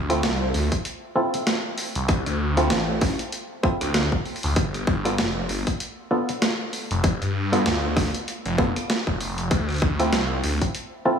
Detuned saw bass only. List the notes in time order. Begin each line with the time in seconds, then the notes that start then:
Already playing: D2
0.23 C2
0.54 D2
1.96 C2
2.26 D2
2.71 A1
3.82 D2
4.44 D2
4.56 G1
4.87 G1
5.19 F1
5.50 G1
6.91 F1
7.21 G2
7.66 D2
8.45 F1
9.07 F1
9.51 D2
9.82 D2
10.13 C2
10.44 D2